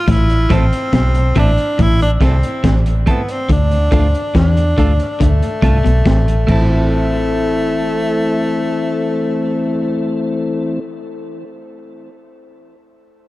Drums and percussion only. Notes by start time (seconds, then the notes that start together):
0.08 kick, closed hi-hat
0.30 closed hi-hat
0.50 kick, closed hi-hat
0.73 closed hi-hat
0.93 kick, snare, closed hi-hat
1.15 closed hi-hat
1.35 kick, closed hi-hat
1.58 closed hi-hat
1.79 kick, closed hi-hat
2.01 closed hi-hat
2.21 kick, snare, closed hi-hat
2.43 closed hi-hat
2.64 kick, snare, closed hi-hat
2.86 closed hi-hat
3.07 kick, closed hi-hat
3.29 closed hi-hat
3.49 kick, closed hi-hat
3.71 closed hi-hat
3.92 kick, closed hi-hat
4.15 closed hi-hat
4.35 kick, snare, closed hi-hat
4.57 closed hi-hat
4.78 kick, closed hi-hat
5.00 closed hi-hat
5.21 kick, closed hi-hat
5.42 closed hi-hat
5.62 kick, closed hi-hat
5.86 closed hi-hat
6.06 kick, snare, closed hi-hat
6.28 closed hi-hat
6.48 kick, crash